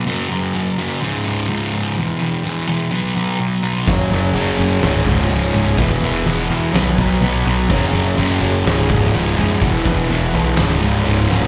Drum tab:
CC |----------------|----------------|x---x---x---x---|x---x---x---x---|
SD |----------------|----------------|--------o--o----|--------o--o----|
FT |----------------|----------------|----------------|----------------|
BD |----------------|----------------|o---------o-----|o---------o-----|

CC |x---x---x---x---|x---x---x---x---|
SD |--------o--o----|--------o-----o-|
FT |----------------|---------------o|
BD |o---------o-----|o-o-------------|